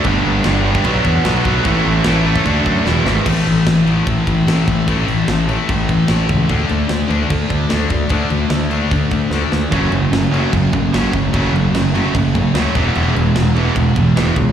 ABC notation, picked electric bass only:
X:1
M:4/4
L:1/8
Q:1/4=149
K:Amix
V:1 name="Picked electric bass" clef=bass
G,,, G,,, G,,,2 B,,, E,, B,,, B,,, | A,,, A,,, A,,,2 D,, F,, E,,, ^G,,, | [K:A] A,,, A,,, A,,, A,,, A,,, A,,, A,,, A,,, | A,,, A,,, A,,,2 A,,,2 A,,, C,, |
D,, D,, D,, D,, D,, D,, D,, D,, | D,, D,, D,,2 D,,2 D,, D,, | F,,, F,,, F,,, F,,, F,,, F,,, F,,, F,,, | F,,, F,,, F,,,2 F,,,2 D,, E,,, |
E,,, E,,, E,,, E,,, E,,, E,,, E,,, C,, |]